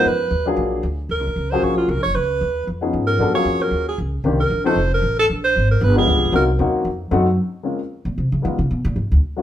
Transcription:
X:1
M:4/4
L:1/8
Q:"Swing" 1/4=229
K:Bbm
V:1 name="Alto saxophone"
_c3 z4 z | B3 c d F B d | _c4 z3 B- | B d2 B2 A z2 |
z B2 c2 B2 =A | z c2 B =B A3 | B z6 z | z8 |
z8 |]
V:2 name="Grand piano"
z3 [G,B,=DFA]3 z2 | z3 [G,B,DFA]3 z2 | z4 z [F,_CDEA]3 | [=G,_C=D_G=A] [_G,B,_DF_A]4 z3 |
[E,B,C=D=G] z2 [F,=A,CE=A] z4 | z4 z [F,=G,A,=B,=D]3 | [G,B,CEG] z [G,B,CEG]2 z2 [G,=A,CEG] z | z2 [A,B,CDF] z4 z |
[=G,A,_CEF] z6 [_G,A,B,DF] |]
V:3 name="Upright bass" clef=bass
F,,2 E,,2 B,,,2 =D,,2 | (3E,, D,, B,,, D,,2 B,,,2 (3C,, B,,, G,,, | D,,2 E,,2 F,,2 A,,2 | G,,2 F,,2 E,,2 D,,2 |
C,,2 B,,,2 F,,,2 =A,,,2 | B,,,2 A,,,2 =G,,,2 (3=D,, =B,,, G,,, | C,,2 E,,2 F,,2 G,,2 | z4 z B,, C, D, |
E, D, _C, B,, A,, =D,, z2 |]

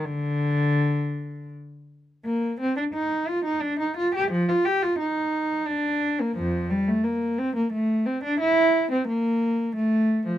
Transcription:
X:1
M:3/4
L:1/16
Q:1/4=88
K:Bb
V:1 name="Cello"
D,8 z4 | B,2 C D E2 F E D E F G | F, F G F E4 D3 B, | [F,,F,]2 G, A, B,2 C B, A,2 C D |
=E3 C B,4 A,3 F, |]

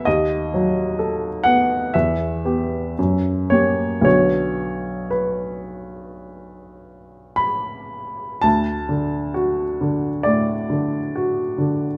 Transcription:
X:1
M:4/4
L:1/8
Q:1/4=62
K:Bm
V:1 name="Upright piano"
^d3 f e3 c | c2 B4 b2 | [K:D] a4 d4 |]
V:2 name="Upright piano" clef=bass
^D,, F, A B, E,, [B,G] F,, [^A,G] | [B,,,D,B,F]8 | [K:D] D,, D, F D, A,, D, F D, |]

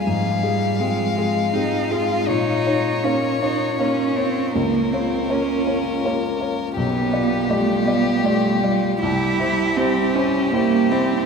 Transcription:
X:1
M:3/4
L:1/8
Q:1/4=80
K:Bbdor
V:1 name="Violin"
f6 | d6 | B6 | G6 |
G2 G4 |]
V:2 name="Grand piano"
A,, [FA] [CFA] [FA] [CFA] [FA] | B,, [Fd] [B,Fd] [Fd] [B,Fd] [Fd] | D,, [Fd] [B,Fd] [Fd] [B,Fd] [Fd] | =B,,, [F=d] [G,Fd] [Fd] [G,Fd] [Fd] |
C,, [=Ec] [G,Ec] [Ec] [G,Ec] [Ec] |]
V:3 name="Cello"
F, G, A,2 E F | E2 D E D C | B, C D2 z2 | =B,2 =A, B, A, G, |
=E2 C D B, C |]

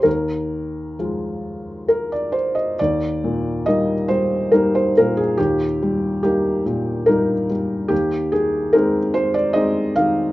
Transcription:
X:1
M:3/4
L:1/16
Q:1/4=70
K:Eb
V:1 name="Felt piano"
B8 B d c e | d4 e2 c2 B c B A | G4 G4 B2 z2 | G2 A2 B2 c d e2 f2 |]
V:2 name="Felt piano" clef=bass
E,,4 [F,A,F]8 | E,,2 B,,2 [G,B,E]2 G,2 [G,B,E]2 B,,2 | E,,2 G,2 [G,B,E]2 B,,2 [G,B,E]2 G,2 | E,,2 E,2 [A,CE]2 A,2 [A,CE]2 E,2 |]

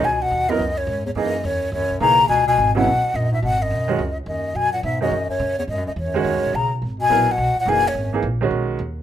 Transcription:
X:1
M:4/4
L:1/8
Q:"Swing" 1/4=212
K:C#dor
V:1 name="Flute"
g f2 d2 c2 c | d2 c2 c2 a2 | g g2 f3 d e | f d4 z d2 |
g f e d2 c2 c | d d c4 a z | z g2 f2 f g c- | c2 z6 |]
V:2 name="Upright piano"
z3 [F,B,EA] z4 | [E,A,DG] z4 z [E,A,DG] z | z3 [C,F,B,E] z4 | z3 [D,G,CF] z4 |
z3 [D,G,CF] z4 | z3 [D,G,CF]3 z2 | z2 [F,B,EA] z3 [E,A,DG] z | z [E,A,DG] z [D,G,CF]3 z2 |]
V:3 name="Bass clarinet" clef=bass
B,, B,,2 F,,2 F,,2 E,, | F,,2 F,,2 F,,2 C,2 | B,, B,,2 B,,3 F,, G,, | B,, F,,4 z F,,2 |
B,, A,, G,, F,,2 F,,2 E,, | F,, F,, F,,4 C, z | z B,,2 B,,2 A,, B,, F,,- | F,,2 z6 |]
V:4 name="Upright bass" clef=bass
C,,2 D,,2 C,,2 G,,2 | F,,2 E,,2 (3D,, C,, B,,, B,,,2 | C,,2 G,,,2 B,,, z A,,,2 | G,,,2 B,,,2 C,,2 D,,2 |
F,,2 B,,2 D, z C,2 | (3G,, F,, C,, E,,2 (3D,, C,, B,,, B,,,2 | G,,,2 A,,,2 B,,, z F,,,2 | G,,,2 A,,,2 B,,,2 D,,2 |]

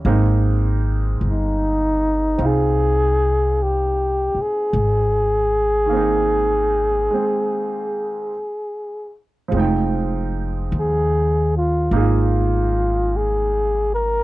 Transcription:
X:1
M:4/4
L:1/8
Q:"Swing" 1/4=50
K:Ab
V:1 name="Flugelhorn"
z2 E2 A2 G A- | A6- A z | [K:Fm] z2 A F F2 A B |]
V:2 name="Grand piano"
[A,B,CE]4 [CEF]4 | z2 [E,B,CE]2 [A,C]2 z2 | [K:Fm] [F,A,CEg]4 [B,EFA]4 |]
V:3 name="Upright bass" clef=bass
A,,,2 G,,,2 C,,3 z | A,,,4 z4 | [K:Fm] F,,,2 E,,2 A,,,4 |]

